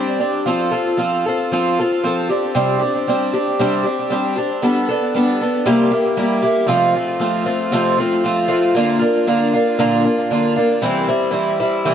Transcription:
0.00 0.18 G3 medium
0.00 0.19 C4 medium
0.00 0.19 D4 medium
0.00 0.19 G4 medium
0.20 0.46 C4 medium
0.20 0.46 D4 medium
0.20 0.46 G4 medium
0.46 0.72 F3 medium
0.46 0.72 C4 medium
0.46 0.71 F4 medium
0.46 0.70 A4 medium
0.71 0.97 C4 soft
0.71 0.98 F4 medium
0.71 0.98 A4 medium
0.97 1.24 F3 medium
0.97 1.25 C4 medium
0.97 1.25 F4 medium
0.97 1.25 A4 medium
1.26 1.52 C4 soft
1.26 1.52 F4 medium
1.26 1.52 A4 medium
1.52 1.77 F3 medium
1.52 1.78 C4 medium
1.52 1.78 F4 medium
1.52 1.78 A4 medium
1.79 2.03 C4 soft
1.79 2.04 F4 medium
1.79 2.04 A4 soft
2.03 2.29 F3 medium
2.03 2.30 C4 medium
2.03 2.30 F4 medium
2.03 2.29 A4 medium
2.29 2.55 C4 medium
2.29 2.55 D4 medium
2.29 2.55 G4 medium
2.55 2.81 C3 medium
2.55 2.81 G3 medium
2.55 2.81 C4 medium
2.55 2.79 D4 medium
2.55 2.78 G4 medium
2.79 3.08 C4 soft
2.79 3.07 D4 medium
2.79 3.06 G4 medium
3.07 3.33 G3 medium
3.07 3.34 C4 medium
3.07 3.33 D4 medium
3.07 3.32 G4 medium
3.33 3.59 C4 soft
3.33 3.59 D4 medium
3.33 3.59 G4 medium
3.59 3.85 C3 medium
3.59 3.85 G3 medium
3.59 3.85 C4 medium
3.59 3.85 D4 medium
3.59 3.82 G4 medium
3.84 4.10 C4 medium
3.84 4.10 D4 soft
3.84 4.10 G4 medium
4.10 4.36 G3 medium
4.10 4.37 C4 medium
4.10 4.36 D4 medium
4.10 4.35 G4 medium
4.36 4.62 C4 soft
4.36 4.62 D4 medium
4.36 4.62 G4 medium
4.62 4.88 G3 medium
4.62 4.89 B3 medium
4.62 4.89 D4 medium
4.62 4.87 A4 medium
4.89 5.15 B3 soft
4.89 5.14 D4 soft
4.89 5.14 A4 medium
5.14 5.40 G3 medium
5.14 5.41 B3 medium
5.14 5.41 D4 medium
5.14 5.40 A4 medium
5.41 5.66 B3 soft
5.41 5.66 D4 medium
5.41 5.66 A4 medium
5.66 5.92 C3 medium
5.66 5.92 G3 medium
5.66 5.92 A#3 medium
5.66 5.92 E4 loud
5.66 5.90 G4 medium
5.91 6.16 A#3 soft
5.91 6.18 E4 soft
5.91 6.17 G4 medium
6.17 6.43 G3 medium
6.17 6.43 A#3 medium
6.17 6.43 E4 medium
6.17 6.41 G4 medium
6.42 6.67 A#3 soft
6.42 6.68 E4 medium
6.42 6.68 G4 medium
6.66 6.94 F2 medium
6.66 6.94 C3 medium
6.66 6.95 F3 medium
6.66 6.94 A3 medium
6.66 6.95 C4 medium
6.66 6.94 F4 medium
6.95 7.18 F3 soft
6.95 7.19 A3 medium
6.95 7.20 C4 medium
6.95 7.20 F4 medium
7.19 7.46 F3 medium
7.19 7.46 A3 medium
7.19 7.45 C4 medium
7.19 7.44 F4 medium
7.46 7.71 F3 medium
7.46 7.72 A3 medium
7.46 7.72 C4 medium
7.46 7.72 F4 medium
7.72 7.98 F2 medium
7.72 7.98 C3 medium
7.72 7.98 F3 medium
7.72 7.98 A3 medium
7.72 7.98 C4 medium
7.72 7.97 F4 medium
7.98 8.22 F3 soft
7.98 8.24 A3 soft
7.98 8.24 C4 medium
7.98 8.24 F4 medium
8.24 8.50 F3 medium
8.24 8.48 A3 medium
8.24 8.47 C4 medium
8.24 8.47 F4 medium
8.48 8.76 F3 medium
8.48 8.75 A3 medium
8.48 8.75 C4 medium
8.48 8.75 F4 medium
8.75 9.01 A#2 medium
8.75 9.02 D3 medium
8.75 9.00 A#3 medium
8.75 9.00 D4 medium
8.75 8.98 F4 medium
8.99 9.26 A#3 medium
8.99 9.26 D4 medium
8.99 9.26 F4 medium
9.27 9.53 D3 medium
9.27 9.53 A#3 medium
9.27 9.53 D4 medium
9.27 9.52 F4 medium
9.53 9.78 A#3 soft
9.53 9.78 D4 medium
9.53 9.78 F4 medium
9.79 10.05 A#2 medium
9.79 10.05 D3 loud
9.79 10.05 A#3 loud
9.79 10.04 D4 loud
9.79 10.03 F4 loud
10.04 10.30 A#3 soft
10.04 10.31 D4 medium
10.04 10.31 F4 medium
10.31 10.57 D3 medium
10.31 10.57 A#3 medium
10.31 10.56 D4 medium
10.31 10.55 F4 medium
10.56 10.83 A#3 medium
10.56 10.83 D4 medium
10.56 10.83 F4 medium
10.82 11.08 C3 medium
10.82 11.09 E3 medium
10.82 11.08 G3 medium
10.82 11.08 C4 medium
10.82 11.07 E4 medium
11.08 11.30 G3 medium
11.08 11.31 C4 medium
11.08 11.32 E4 medium
11.31 11.59 E3 medium
11.31 11.59 G3 medium
11.31 11.59 C4 medium
11.31 11.59 E4 medium
11.60 11.85 G3 medium
11.60 11.85 C4 medium
11.60 11.86 E4 medium
11.85 11.94 C3 medium
11.85 11.94 E3 loud
11.85 11.94 G3 medium
11.85 11.94 C4 medium
11.85 11.94 E4 medium

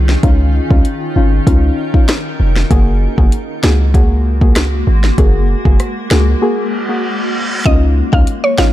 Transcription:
0.00 0.16 C2 medium
0.00 2.67 D#3 medium
0.00 2.67 C#4 medium
0.00 2.67 D#4 medium
0.00 2.67 F4 medium
0.00 0.21 G#4 medium
0.09 snare medium
0.23 0.60 C#2 loud
0.23 0.67 C#4 loud
0.23 0.67 D#4 medium
0.23 0.67 F4 loud
0.23 2.68 A#4 medium
0.23 kick loud
0.23 closed hi-hat medium
0.70 0.82 C#2 medium
0.70 0.83 C#4 medium
0.70 0.83 D#4 medium
0.70 0.83 F4 medium
0.70 kick loud
0.85 closed hi-hat medium
1.16 1.40 G#1 medium
1.16 1.30 C#4 medium
1.16 1.30 D#4 medium
1.16 1.30 F4 medium
1.47 1.71 C#2 loud
1.47 1.90 C#4 loud
1.47 1.90 D#4 medium
1.47 1.91 F4 loud
1.47 kick medium
1.47 closed hi-hat medium
1.94 2.06 C#4 medium
1.94 2.06 D#4 medium
1.94 2.07 F4 medium
1.94 kick medium
2.08 cross-stick medium
2.08 snare loud
2.08 closed hi-hat medium
2.40 2.64 F1 medium
2.56 snare medium
2.70 3.08 F#1 loud
2.70 7.62 G#3 medium
2.70 3.14 A#3 medium
2.70 7.62 A#3 medium
2.70 3.14 F#4 medium
2.70 7.62 F#4 medium
2.70 3.14 G#4 loud
2.70 kick loud
2.70 closed hi-hat medium
3.18 3.29 F#1 medium
3.18 3.30 A#3 medium
3.18 3.30 F#4 medium
3.18 3.30 G#4 medium
3.18 kick loud
3.32 closed hi-hat medium
3.63 4.83 C#2 medium
3.63 3.77 A#3 medium
3.63 3.77 F#4 medium
3.63 3.77 G#4 medium
3.63 snare loud
3.94 4.38 A#3 medium
3.94 4.38 F#4 medium
3.94 4.38 G#4 loud
3.94 kick medium
3.94 closed hi-hat medium
4.41 4.54 A#3 medium
4.41 4.54 F#4 medium
4.41 4.54 G#4 medium
4.41 kick loud
4.56 cross-stick loud
4.56 snare loud
4.56 closed hi-hat medium
4.87 5.11 G#1 loud
5.04 snare medium
5.18 5.55 F#1 loud
5.18 5.61 A#3 medium
5.18 5.61 F#4 medium
5.18 5.62 G#4 loud
5.18 kick loud
5.18 closed hi-hat medium
5.65 5.77 F#1 medium
5.65 5.77 A#3 medium
5.65 5.77 F#4 medium
5.65 5.78 G#4 medium
5.65 kick loud
5.80 cross-stick medium
5.80 closed hi-hat medium
6.11 6.35 C#2 medium
6.11 6.24 A#3 medium
6.11 6.25 F#4 medium
6.11 6.25 G#4 medium
6.11 snare loud
6.42 6.85 A#3 medium
6.42 6.85 F#4 medium
6.42 6.85 G#4 loud
6.42 reverse cymbal medium
6.89 7.01 A#3 medium
6.89 7.01 F#4 medium
6.89 7.01 G#4 medium
7.65 8.02 C#2 loud
7.65 8.73 D#3 medium
7.65 8.09 C#4 loud
7.65 8.73 C#4 medium
7.65 8.73 D#4 medium
7.65 8.09 D#4 medium
7.65 8.73 F4 medium
7.65 8.09 F4 loud
7.65 8.73 G#4 medium
7.65 7.80 D#5 loud
7.65 kick loud
7.65 closed hi-hat medium
8.13 8.24 C#2 medium
8.13 8.25 C#4 medium
8.13 8.25 D#4 medium
8.13 8.25 F4 medium
8.13 8.26 F5 medium
8.13 kick loud
8.27 closed hi-hat medium
8.44 8.57 C#5 medium
8.58 8.73 G#1 medium
8.58 8.72 C#4 medium
8.58 8.72 D#4 medium
8.58 8.72 F4 medium
8.58 8.73 F5 medium
8.58 snare loud

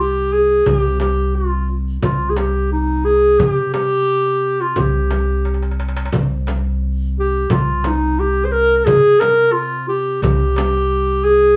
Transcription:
0.00 0.63 C2 medium
0.00 0.34 G4 medium
0.32 0.69 G#4 medium
0.66 1.99 C2 medium
0.66 1.00 G4 medium
0.66 frame drum medium
0.66 darbuka dum medium
1.00 1.36 G4 medium
1.00 darbuka tek medium
1.00 frame drum medium
1.35 1.69 F4 medium
1.35 darbuka ka soft
1.52 darbuka ka soft
1.69 darbuka ka soft
2.02 3.36 C2 medium
2.02 2.32 F4 medium
2.02 frame drum medium
2.02 darbuka dum medium
2.30 2.38 G#4 medium
2.37 2.71 G4 medium
2.37 darbuka tek medium
2.37 frame drum medium
2.55 darbuka ka soft
2.72 3.07 D#4 medium
2.72 darbuka ka soft
3.05 3.41 G#4 medium
3.39 4.72 C3 medium
3.39 3.73 G4 medium
3.39 darbuka dum medium
3.39 frame drum medium
3.73 4.62 G4 loud
3.73 darbuka tek medium
3.73 frame drum medium
4.26 darbuka ka soft
4.43 darbuka ka soft
4.61 4.79 F4 medium
4.61 darbuka ka soft
4.76 6.09 C2 medium
4.76 5.80 G4 medium
4.76 frame drum medium
4.76 darbuka dum medium
4.96 darbuka ka soft
5.11 darbuka tek medium
5.11 frame drum medium
5.29 darbuka ka soft
5.45 darbuka tek soft
5.54 darbuka ka medium
5.62 darbuka tek medium
5.71 darbuka ka medium
5.80 darbuka tek medium
5.89 darbuka ka medium
5.97 darbuka tek medium
6.05 darbuka ka medium
6.13 7.46 C2 loud
6.13 frame drum medium
6.13 darbuka dum medium
6.47 darbuka tek medium
6.47 frame drum medium
6.82 darbuka ka soft
7.17 7.53 G4 medium
7.17 darbuka ka soft
7.50 8.83 C2 medium
7.50 7.88 F4 medium
7.50 frame drum medium
7.50 darbuka dum medium
7.68 darbuka ka soft
7.84 8.21 D#4 medium
7.84 darbuka tek medium
7.84 frame drum medium
8.02 darbuka ka soft
8.19 8.46 G4 medium
8.19 darbuka ka soft
8.45 8.53 C5 medium
8.52 8.78 A#4 loud
8.78 8.86 A#4 medium
8.85 10.19 C3 medium
8.85 9.21 G#4 loud
8.85 frame drum medium
8.85 darbuka dum medium
9.20 9.54 A#4 loud
9.20 darbuka tek medium
9.20 frame drum medium
9.52 9.88 F4 medium
9.52 darbuka ka soft
9.73 darbuka ka soft
9.88 10.21 G4 medium
9.88 darbuka ka soft
10.22 11.55 C2 medium
10.22 11.26 G4 medium
10.22 darbuka dum medium
10.22 frame drum medium
10.39 darbuka ka soft
10.56 darbuka tek medium
10.56 frame drum medium
10.90 darbuka ka soft
11.24 11.56 G#4 medium

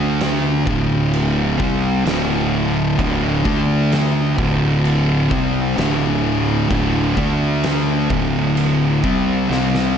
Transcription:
0.00 0.63 D2 medium
0.00 0.65 D3 medium
0.00 0.65 A3 medium
0.00 0.65 D4 medium
0.20 snare loud
0.20 crash medium
0.65 1.56 D1 loud
0.65 1.57 D2 medium
0.65 1.58 A2 loud
0.65 1.58 D3 loud
0.65 kick loud
1.13 crash medium
1.59 2.03 C2 medium
1.59 2.04 C3 medium
1.59 2.04 G3 medium
1.59 2.05 C4 loud
1.59 kick loud
2.05 2.95 D1 medium
2.05 2.96 D2 medium
2.05 2.97 A2 medium
2.05 2.98 D3 loud
2.05 snare loud
2.05 crash medium
2.98 3.42 D1 loud
2.98 3.43 D2 loud
2.98 3.43 A2 loud
2.98 3.42 D3 loud
2.98 kick loud
2.98 crash medium
3.43 4.34 D2 medium
3.43 4.36 D3 medium
3.43 4.37 A3 medium
3.43 4.37 D4 loud
3.43 kick loud
3.92 snare loud
3.92 crash medium
4.37 5.27 D1 loud
4.37 5.29 D2 medium
4.37 5.30 A2 loud
4.37 5.30 D3 loud
4.37 kick loud
4.85 crash medium
5.30 5.74 C2 medium
5.30 5.76 C3 medium
5.30 5.76 G3 loud
5.30 5.76 C4 loud
5.30 kick loud
5.76 6.67 D1 loud
5.76 6.68 D2 loud
5.76 6.68 A2 medium
5.76 6.69 D3 loud
5.76 snare loud
5.76 crash medium
6.69 7.14 D1 loud
6.69 7.15 D2 loud
6.69 7.15 A2 loud
6.69 7.15 D3 loud
6.69 kick loud
6.69 crash medium
7.17 8.07 D2 medium
7.17 8.09 D3 medium
7.17 8.09 A3 loud
7.17 8.10 D4 loud
7.17 kick loud
7.63 snare loud
7.63 crash medium
8.10 9.00 D1 loud
8.10 9.02 D2 medium
8.10 9.02 A2 medium
8.10 9.03 D3 loud
8.10 kick loud
8.57 crash medium
9.03 9.47 C2 medium
9.03 9.48 C3 medium
9.03 9.49 G3 medium
9.03 9.49 C4 loud
9.03 kick loud
9.49 9.98 C2 medium
9.49 9.98 C3 medium
9.49 9.98 G3 medium
9.49 9.98 C4 loud
9.49 snare medium
9.75 snare medium

